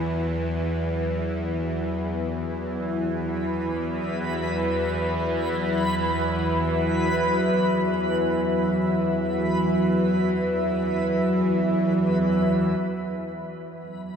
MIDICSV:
0, 0, Header, 1, 4, 480
1, 0, Start_track
1, 0, Tempo, 500000
1, 13595, End_track
2, 0, Start_track
2, 0, Title_t, "Synth texture"
2, 0, Program_c, 0, 99
2, 2319, Note_on_c, 0, 71, 83
2, 12329, Note_off_c, 0, 71, 0
2, 13595, End_track
3, 0, Start_track
3, 0, Title_t, "Ambient pad"
3, 0, Program_c, 1, 92
3, 0, Note_on_c, 1, 54, 73
3, 0, Note_on_c, 1, 66, 66
3, 0, Note_on_c, 1, 76, 78
3, 13595, Note_off_c, 1, 54, 0
3, 13595, Note_off_c, 1, 66, 0
3, 13595, Note_off_c, 1, 76, 0
3, 13595, End_track
4, 0, Start_track
4, 0, Title_t, "Synth drone"
4, 0, Program_c, 2, 95
4, 0, Note_on_c, 2, 40, 64
4, 0, Note_on_c, 2, 52, 71
4, 12298, Note_off_c, 2, 52, 0
4, 12303, Note_off_c, 2, 40, 0
4, 12309, Note_on_c, 2, 52, 74
4, 12315, Note_on_c, 2, 40, 74
4, 13595, Note_off_c, 2, 40, 0
4, 13595, Note_off_c, 2, 52, 0
4, 13595, End_track
0, 0, End_of_file